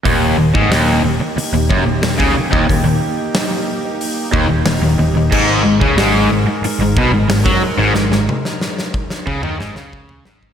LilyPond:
<<
  \new Staff \with { instrumentName = "Analog synth pad" } { \time 4/4 \key ees \mixolydian \tempo 4 = 91 << { <bes g'>1~ | <bes g'>1 | <aes bes'>1~ | <aes bes'>1 | } \\ { ees'1~ | ees'1~ | ees'1~ | ees'1 | } >> }
  \new Staff \with { instrumentName = "Distorted electric guitar" } { \clef bass \time 4/4 \key ees \mixolydian ees,8 ees,16 aes,16 ees,8 ees,16 r8 ees,16 ges,16 ees,16 ees,16 des16 r16 ees,16 | ees,16 ees,16 r2 ees,16 ees,16 ees,16 ees,16 ees,16 ees,16 | aes,8 aes,16 des16 aes,8 aes,16 r8 aes,16 ces16 aes,16 aes,16 ges16 r16 aes,16 | aes,16 aes,16 r4. des16 ees16 aes,16 des8. aes,8 | }
  \new Staff \with { instrumentName = "Overdriven electric guitar" } { \clef bass \time 4/4 \key ees \mixolydian ees,8 ees,16 aes,16 ees,8 ees,16 r8 ees,16 ges,16 ees,16 ees,16 des16 r16 ees,16 | ees,16 ees,16 r2 ees,16 ees,16 ees,16 ees,16 ees,16 ees,16 | aes,8 aes,16 des16 aes,8 aes,16 r8 aes,16 ces16 aes,16 aes,16 ges16 r16 aes,16 | aes,16 aes,16 r4. des16 ees16 aes,16 des8. aes,8 | }
  \new Staff \with { instrumentName = "Picked electric bass" } { \clef bass \time 4/4 \key ees \mixolydian ees,,8 ees,,16 aes,,16 ees,,8 ees,,16 r8 ees,,16 ges,,16 ees,,16 ees,,16 des,16 r16 ees,,16 | ees,,16 ees,,16 r2 ees,,16 ees,,16 ees,,16 ees,,16 ees,,16 ees,,16 | aes,,8 aes,,16 des,16 aes,,8 aes,,16 r8 aes,,16 ces,16 aes,,16 aes,,16 ges,16 r16 aes,,16 | aes,,16 aes,,16 r4. des,16 ees,16 aes,,16 des,8. aes,,8 | }
  \new DrumStaff \with { instrumentName = "Drums" } \drummode { \time 4/4 <hho bd>8. bd16 <hho sn>4 hho8 bd8 <hho sn>16 bd8 bd16 | <hho bd>4 <hho sn>4 hho8 bd8 <hho sn>4 | <cymc bd>8. bd16 <hho sn>4 hho8 bd8 <hho sn>16 bd8. | sn16 sn16 tommh16 sn16 sn16 sn16 bd16 sn16 bd16 toml16 sn16 sn16 bd16 tomfh16 sn16 bd16 | }
>>